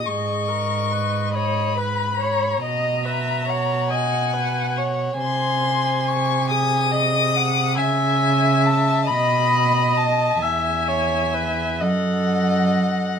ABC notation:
X:1
M:6/8
L:1/8
Q:3/8=46
K:G#m
V:1 name="Violin"
c'3 b3 | a3 g2 z | [K:G#phr] ^b2 c' d'3 | g2 a b2 a |
g3 f3 |]
V:2 name="Violin"
d3 c B c | d e f4 | [K:G#phr] g3 g d f | e3 d3 |
e3 d3 |]
V:3 name="Viola"
G A B d B c | d B c d B c | [K:G#phr] ^B3 G3 | e3 d3 |
e c B A3 |]
V:4 name="Cello" clef=bass
G,,6 | B,,6 | [K:G#phr] ^B,,6 | C,3 B,,3 |
E,,3 F,,3 |]